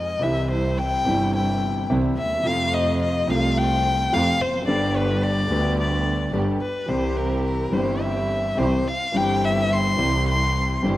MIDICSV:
0, 0, Header, 1, 5, 480
1, 0, Start_track
1, 0, Tempo, 556586
1, 185, Time_signature, 4, 2, 24, 8
1, 6420, Tempo, 564440
1, 9421, End_track
2, 0, Start_track
2, 0, Title_t, "Violin"
2, 0, Program_c, 0, 40
2, 0, Note_on_c, 0, 75, 81
2, 193, Note_on_c, 0, 76, 85
2, 206, Note_off_c, 0, 75, 0
2, 433, Note_off_c, 0, 76, 0
2, 441, Note_on_c, 0, 72, 85
2, 673, Note_on_c, 0, 79, 100
2, 686, Note_off_c, 0, 72, 0
2, 1156, Note_off_c, 0, 79, 0
2, 1171, Note_on_c, 0, 79, 83
2, 1610, Note_off_c, 0, 79, 0
2, 1879, Note_on_c, 0, 76, 86
2, 2128, Note_on_c, 0, 77, 95
2, 2141, Note_off_c, 0, 76, 0
2, 2362, Note_on_c, 0, 75, 88
2, 2375, Note_off_c, 0, 77, 0
2, 2600, Note_off_c, 0, 75, 0
2, 2606, Note_on_c, 0, 75, 83
2, 2844, Note_on_c, 0, 77, 89
2, 2856, Note_off_c, 0, 75, 0
2, 3081, Note_on_c, 0, 79, 97
2, 3094, Note_off_c, 0, 77, 0
2, 3569, Note_on_c, 0, 77, 99
2, 3582, Note_off_c, 0, 79, 0
2, 3805, Note_on_c, 0, 72, 90
2, 3818, Note_off_c, 0, 77, 0
2, 4029, Note_off_c, 0, 72, 0
2, 4035, Note_on_c, 0, 74, 86
2, 4284, Note_on_c, 0, 71, 85
2, 4297, Note_off_c, 0, 74, 0
2, 4515, Note_on_c, 0, 74, 91
2, 4528, Note_off_c, 0, 71, 0
2, 4989, Note_off_c, 0, 74, 0
2, 5003, Note_on_c, 0, 74, 73
2, 5438, Note_off_c, 0, 74, 0
2, 5704, Note_on_c, 0, 71, 75
2, 5942, Note_on_c, 0, 72, 77
2, 5955, Note_off_c, 0, 71, 0
2, 6184, Note_on_c, 0, 70, 70
2, 6197, Note_off_c, 0, 72, 0
2, 6421, Note_off_c, 0, 70, 0
2, 6426, Note_on_c, 0, 70, 76
2, 6666, Note_on_c, 0, 72, 72
2, 6679, Note_off_c, 0, 70, 0
2, 6902, Note_on_c, 0, 76, 78
2, 6915, Note_off_c, 0, 72, 0
2, 7389, Note_on_c, 0, 72, 81
2, 7402, Note_off_c, 0, 76, 0
2, 7639, Note_on_c, 0, 77, 90
2, 7652, Note_off_c, 0, 72, 0
2, 7881, Note_on_c, 0, 79, 93
2, 7894, Note_off_c, 0, 77, 0
2, 8123, Note_on_c, 0, 76, 89
2, 8136, Note_off_c, 0, 79, 0
2, 8362, Note_on_c, 0, 84, 97
2, 8374, Note_off_c, 0, 76, 0
2, 8833, Note_off_c, 0, 84, 0
2, 8837, Note_on_c, 0, 84, 94
2, 9276, Note_off_c, 0, 84, 0
2, 9421, End_track
3, 0, Start_track
3, 0, Title_t, "String section"
3, 0, Program_c, 1, 48
3, 0, Note_on_c, 1, 63, 64
3, 0, Note_on_c, 1, 65, 73
3, 86, Note_off_c, 1, 63, 0
3, 87, Note_off_c, 1, 65, 0
3, 181, Note_on_c, 1, 55, 78
3, 188, Note_on_c, 1, 60, 73
3, 188, Note_on_c, 1, 64, 89
3, 876, Note_off_c, 1, 55, 0
3, 879, Note_off_c, 1, 60, 0
3, 879, Note_off_c, 1, 64, 0
3, 910, Note_on_c, 1, 60, 71
3, 913, Note_on_c, 1, 55, 75
3, 913, Note_on_c, 1, 64, 85
3, 1597, Note_off_c, 1, 60, 0
3, 1598, Note_off_c, 1, 64, 0
3, 1599, Note_off_c, 1, 55, 0
3, 1636, Note_on_c, 1, 55, 71
3, 1637, Note_on_c, 1, 60, 69
3, 1637, Note_on_c, 1, 64, 84
3, 1837, Note_off_c, 1, 55, 0
3, 1838, Note_off_c, 1, 60, 0
3, 1838, Note_off_c, 1, 64, 0
3, 2117, Note_on_c, 1, 57, 84
3, 2119, Note_on_c, 1, 60, 74
3, 2123, Note_on_c, 1, 65, 89
3, 2802, Note_off_c, 1, 57, 0
3, 2803, Note_off_c, 1, 60, 0
3, 2805, Note_off_c, 1, 65, 0
3, 2838, Note_on_c, 1, 57, 80
3, 2839, Note_on_c, 1, 60, 68
3, 2842, Note_on_c, 1, 65, 92
3, 3522, Note_off_c, 1, 57, 0
3, 3523, Note_off_c, 1, 60, 0
3, 3524, Note_off_c, 1, 65, 0
3, 3556, Note_on_c, 1, 57, 74
3, 3556, Note_on_c, 1, 60, 72
3, 3560, Note_on_c, 1, 65, 78
3, 3758, Note_off_c, 1, 57, 0
3, 3758, Note_off_c, 1, 60, 0
3, 3760, Note_off_c, 1, 65, 0
3, 4036, Note_on_c, 1, 59, 88
3, 4038, Note_on_c, 1, 62, 82
3, 4040, Note_on_c, 1, 67, 95
3, 4714, Note_off_c, 1, 59, 0
3, 4715, Note_off_c, 1, 62, 0
3, 4716, Note_off_c, 1, 67, 0
3, 4748, Note_on_c, 1, 59, 83
3, 4748, Note_on_c, 1, 67, 88
3, 4749, Note_on_c, 1, 62, 72
3, 5427, Note_off_c, 1, 59, 0
3, 5427, Note_off_c, 1, 62, 0
3, 5427, Note_off_c, 1, 67, 0
3, 5457, Note_on_c, 1, 59, 73
3, 5460, Note_on_c, 1, 62, 63
3, 5462, Note_on_c, 1, 67, 80
3, 5660, Note_off_c, 1, 59, 0
3, 5661, Note_off_c, 1, 62, 0
3, 5663, Note_off_c, 1, 67, 0
3, 5938, Note_on_c, 1, 60, 89
3, 5939, Note_on_c, 1, 64, 74
3, 5941, Note_on_c, 1, 67, 97
3, 6625, Note_off_c, 1, 60, 0
3, 6625, Note_off_c, 1, 64, 0
3, 6626, Note_off_c, 1, 67, 0
3, 6668, Note_on_c, 1, 60, 76
3, 6670, Note_on_c, 1, 64, 74
3, 6672, Note_on_c, 1, 67, 86
3, 7350, Note_off_c, 1, 60, 0
3, 7351, Note_off_c, 1, 64, 0
3, 7352, Note_off_c, 1, 67, 0
3, 7389, Note_on_c, 1, 60, 72
3, 7390, Note_on_c, 1, 64, 59
3, 7392, Note_on_c, 1, 67, 70
3, 7591, Note_off_c, 1, 60, 0
3, 7591, Note_off_c, 1, 64, 0
3, 7592, Note_off_c, 1, 67, 0
3, 7873, Note_on_c, 1, 64, 74
3, 7874, Note_on_c, 1, 60, 83
3, 7876, Note_on_c, 1, 67, 88
3, 8554, Note_off_c, 1, 60, 0
3, 8554, Note_off_c, 1, 64, 0
3, 8555, Note_off_c, 1, 67, 0
3, 8593, Note_on_c, 1, 60, 75
3, 8596, Note_on_c, 1, 64, 74
3, 8596, Note_on_c, 1, 67, 79
3, 9271, Note_off_c, 1, 60, 0
3, 9273, Note_off_c, 1, 64, 0
3, 9273, Note_off_c, 1, 67, 0
3, 9308, Note_on_c, 1, 60, 76
3, 9311, Note_on_c, 1, 64, 73
3, 9311, Note_on_c, 1, 67, 76
3, 9421, Note_off_c, 1, 60, 0
3, 9421, Note_off_c, 1, 64, 0
3, 9421, Note_off_c, 1, 67, 0
3, 9421, End_track
4, 0, Start_track
4, 0, Title_t, "Grand piano"
4, 0, Program_c, 2, 0
4, 0, Note_on_c, 2, 53, 60
4, 0, Note_on_c, 2, 56, 46
4, 0, Note_on_c, 2, 63, 55
4, 86, Note_off_c, 2, 53, 0
4, 89, Note_off_c, 2, 56, 0
4, 94, Note_off_c, 2, 63, 0
4, 166, Note_on_c, 2, 48, 69
4, 179, Note_off_c, 2, 48, 0
4, 180, Note_on_c, 2, 52, 58
4, 184, Note_on_c, 2, 36, 83
4, 186, Note_on_c, 2, 48, 77
4, 191, Note_on_c, 2, 55, 59
4, 201, Note_on_c, 2, 64, 74
4, 875, Note_off_c, 2, 52, 0
4, 878, Note_off_c, 2, 36, 0
4, 878, Note_off_c, 2, 48, 0
4, 881, Note_off_c, 2, 55, 0
4, 886, Note_off_c, 2, 64, 0
4, 903, Note_on_c, 2, 48, 75
4, 912, Note_on_c, 2, 52, 61
4, 919, Note_on_c, 2, 43, 76
4, 921, Note_on_c, 2, 31, 77
4, 925, Note_on_c, 2, 55, 63
4, 936, Note_on_c, 2, 64, 72
4, 1593, Note_off_c, 2, 48, 0
4, 1598, Note_off_c, 2, 52, 0
4, 1601, Note_off_c, 2, 43, 0
4, 1603, Note_off_c, 2, 31, 0
4, 1604, Note_off_c, 2, 55, 0
4, 1610, Note_off_c, 2, 64, 0
4, 1636, Note_on_c, 2, 48, 83
4, 1636, Note_on_c, 2, 52, 60
4, 1639, Note_on_c, 2, 36, 80
4, 1640, Note_on_c, 2, 55, 58
4, 1641, Note_on_c, 2, 64, 80
4, 1837, Note_off_c, 2, 52, 0
4, 1838, Note_off_c, 2, 48, 0
4, 1839, Note_off_c, 2, 36, 0
4, 1839, Note_off_c, 2, 55, 0
4, 1840, Note_off_c, 2, 64, 0
4, 1944, Note_on_c, 2, 38, 45
4, 2000, Note_off_c, 2, 38, 0
4, 2003, Note_on_c, 2, 39, 58
4, 2060, Note_off_c, 2, 39, 0
4, 2065, Note_on_c, 2, 40, 61
4, 2097, Note_on_c, 2, 48, 64
4, 2111, Note_on_c, 2, 53, 85
4, 2117, Note_on_c, 2, 41, 86
4, 2120, Note_on_c, 2, 57, 64
4, 2121, Note_off_c, 2, 40, 0
4, 2134, Note_on_c, 2, 65, 76
4, 2792, Note_off_c, 2, 48, 0
4, 2802, Note_off_c, 2, 41, 0
4, 2802, Note_off_c, 2, 53, 0
4, 2803, Note_off_c, 2, 57, 0
4, 2811, Note_off_c, 2, 65, 0
4, 2823, Note_on_c, 2, 48, 85
4, 2832, Note_on_c, 2, 53, 66
4, 2840, Note_on_c, 2, 36, 78
4, 2843, Note_on_c, 2, 57, 69
4, 2856, Note_on_c, 2, 65, 72
4, 3519, Note_off_c, 2, 53, 0
4, 3522, Note_off_c, 2, 48, 0
4, 3523, Note_off_c, 2, 36, 0
4, 3524, Note_off_c, 2, 57, 0
4, 3531, Note_off_c, 2, 65, 0
4, 3559, Note_on_c, 2, 41, 84
4, 3559, Note_on_c, 2, 48, 67
4, 3560, Note_on_c, 2, 53, 79
4, 3560, Note_on_c, 2, 57, 62
4, 3560, Note_on_c, 2, 65, 75
4, 3759, Note_off_c, 2, 41, 0
4, 3759, Note_off_c, 2, 48, 0
4, 3760, Note_off_c, 2, 57, 0
4, 3760, Note_off_c, 2, 65, 0
4, 3761, Note_off_c, 2, 53, 0
4, 3855, Note_on_c, 2, 40, 44
4, 3915, Note_off_c, 2, 40, 0
4, 3915, Note_on_c, 2, 41, 58
4, 3973, Note_on_c, 2, 42, 73
4, 3975, Note_off_c, 2, 41, 0
4, 4015, Note_on_c, 2, 50, 75
4, 4024, Note_on_c, 2, 55, 69
4, 4029, Note_on_c, 2, 31, 85
4, 4030, Note_on_c, 2, 43, 88
4, 4033, Note_off_c, 2, 42, 0
4, 4036, Note_on_c, 2, 59, 67
4, 4047, Note_on_c, 2, 67, 82
4, 4703, Note_off_c, 2, 50, 0
4, 4708, Note_off_c, 2, 55, 0
4, 4710, Note_off_c, 2, 31, 0
4, 4711, Note_off_c, 2, 43, 0
4, 4714, Note_off_c, 2, 59, 0
4, 4719, Note_off_c, 2, 67, 0
4, 4724, Note_on_c, 2, 50, 71
4, 4737, Note_off_c, 2, 50, 0
4, 4739, Note_on_c, 2, 55, 69
4, 4743, Note_on_c, 2, 50, 81
4, 4746, Note_on_c, 2, 38, 85
4, 4749, Note_on_c, 2, 59, 70
4, 4760, Note_on_c, 2, 67, 80
4, 5422, Note_off_c, 2, 55, 0
4, 5424, Note_off_c, 2, 50, 0
4, 5426, Note_off_c, 2, 38, 0
4, 5427, Note_off_c, 2, 59, 0
4, 5433, Note_off_c, 2, 67, 0
4, 5458, Note_on_c, 2, 50, 67
4, 5460, Note_on_c, 2, 59, 60
4, 5461, Note_on_c, 2, 31, 80
4, 5461, Note_on_c, 2, 55, 58
4, 5462, Note_on_c, 2, 43, 81
4, 5463, Note_on_c, 2, 67, 77
4, 5661, Note_off_c, 2, 50, 0
4, 5661, Note_off_c, 2, 59, 0
4, 5662, Note_off_c, 2, 31, 0
4, 5662, Note_off_c, 2, 55, 0
4, 5663, Note_off_c, 2, 43, 0
4, 5663, Note_off_c, 2, 67, 0
4, 5918, Note_on_c, 2, 52, 69
4, 5930, Note_on_c, 2, 55, 59
4, 5937, Note_on_c, 2, 36, 76
4, 5938, Note_on_c, 2, 48, 85
4, 5941, Note_on_c, 2, 60, 63
4, 5954, Note_on_c, 2, 67, 78
4, 6615, Note_off_c, 2, 52, 0
4, 6620, Note_off_c, 2, 55, 0
4, 6624, Note_off_c, 2, 36, 0
4, 6624, Note_off_c, 2, 48, 0
4, 6626, Note_off_c, 2, 60, 0
4, 6632, Note_off_c, 2, 67, 0
4, 6638, Note_on_c, 2, 52, 70
4, 6654, Note_on_c, 2, 55, 68
4, 6656, Note_on_c, 2, 43, 82
4, 6657, Note_on_c, 2, 31, 81
4, 6663, Note_on_c, 2, 60, 68
4, 6673, Note_on_c, 2, 67, 69
4, 7335, Note_off_c, 2, 52, 0
4, 7343, Note_off_c, 2, 55, 0
4, 7344, Note_off_c, 2, 43, 0
4, 7345, Note_off_c, 2, 31, 0
4, 7348, Note_off_c, 2, 60, 0
4, 7353, Note_off_c, 2, 67, 0
4, 7373, Note_on_c, 2, 52, 67
4, 7376, Note_on_c, 2, 55, 57
4, 7377, Note_on_c, 2, 48, 77
4, 7378, Note_on_c, 2, 36, 78
4, 7379, Note_on_c, 2, 60, 62
4, 7380, Note_on_c, 2, 67, 74
4, 7582, Note_off_c, 2, 52, 0
4, 7584, Note_off_c, 2, 55, 0
4, 7585, Note_off_c, 2, 36, 0
4, 7585, Note_off_c, 2, 48, 0
4, 7586, Note_off_c, 2, 60, 0
4, 7586, Note_off_c, 2, 67, 0
4, 7847, Note_on_c, 2, 52, 67
4, 7858, Note_on_c, 2, 55, 61
4, 7863, Note_on_c, 2, 31, 80
4, 7864, Note_on_c, 2, 43, 86
4, 7869, Note_on_c, 2, 60, 59
4, 7877, Note_on_c, 2, 67, 79
4, 8541, Note_off_c, 2, 52, 0
4, 8546, Note_off_c, 2, 55, 0
4, 8549, Note_off_c, 2, 31, 0
4, 8549, Note_off_c, 2, 43, 0
4, 8552, Note_off_c, 2, 60, 0
4, 8556, Note_off_c, 2, 67, 0
4, 8564, Note_on_c, 2, 52, 75
4, 8578, Note_on_c, 2, 55, 70
4, 8581, Note_on_c, 2, 36, 83
4, 8582, Note_on_c, 2, 48, 87
4, 8588, Note_on_c, 2, 60, 62
4, 8601, Note_on_c, 2, 67, 70
4, 9256, Note_off_c, 2, 52, 0
4, 9264, Note_off_c, 2, 55, 0
4, 9265, Note_off_c, 2, 36, 0
4, 9265, Note_off_c, 2, 48, 0
4, 9268, Note_off_c, 2, 60, 0
4, 9275, Note_off_c, 2, 67, 0
4, 9292, Note_on_c, 2, 60, 68
4, 9293, Note_on_c, 2, 55, 62
4, 9294, Note_on_c, 2, 31, 88
4, 9294, Note_on_c, 2, 52, 67
4, 9296, Note_on_c, 2, 43, 79
4, 9298, Note_on_c, 2, 67, 73
4, 9421, Note_off_c, 2, 31, 0
4, 9421, Note_off_c, 2, 43, 0
4, 9421, Note_off_c, 2, 52, 0
4, 9421, Note_off_c, 2, 55, 0
4, 9421, Note_off_c, 2, 60, 0
4, 9421, Note_off_c, 2, 67, 0
4, 9421, End_track
5, 0, Start_track
5, 0, Title_t, "Double bass"
5, 0, Program_c, 3, 43
5, 0, Note_on_c, 3, 41, 65
5, 89, Note_off_c, 3, 41, 0
5, 188, Note_on_c, 3, 36, 83
5, 880, Note_off_c, 3, 36, 0
5, 926, Note_on_c, 3, 31, 88
5, 1605, Note_off_c, 3, 31, 0
5, 1645, Note_on_c, 3, 36, 84
5, 1842, Note_off_c, 3, 36, 0
5, 1886, Note_on_c, 3, 39, 56
5, 2118, Note_off_c, 3, 39, 0
5, 2123, Note_on_c, 3, 41, 88
5, 2805, Note_off_c, 3, 41, 0
5, 2844, Note_on_c, 3, 36, 86
5, 3525, Note_off_c, 3, 36, 0
5, 3561, Note_on_c, 3, 41, 84
5, 3760, Note_off_c, 3, 41, 0
5, 3802, Note_on_c, 3, 29, 63
5, 4029, Note_off_c, 3, 29, 0
5, 4034, Note_on_c, 3, 31, 102
5, 4713, Note_off_c, 3, 31, 0
5, 4753, Note_on_c, 3, 38, 99
5, 5429, Note_off_c, 3, 38, 0
5, 5459, Note_on_c, 3, 31, 91
5, 5661, Note_off_c, 3, 31, 0
5, 5943, Note_on_c, 3, 36, 88
5, 6627, Note_off_c, 3, 36, 0
5, 6662, Note_on_c, 3, 31, 93
5, 7347, Note_off_c, 3, 31, 0
5, 7384, Note_on_c, 3, 36, 87
5, 7588, Note_off_c, 3, 36, 0
5, 7868, Note_on_c, 3, 31, 87
5, 8551, Note_off_c, 3, 31, 0
5, 8590, Note_on_c, 3, 36, 98
5, 9269, Note_off_c, 3, 36, 0
5, 9312, Note_on_c, 3, 31, 88
5, 9421, Note_off_c, 3, 31, 0
5, 9421, End_track
0, 0, End_of_file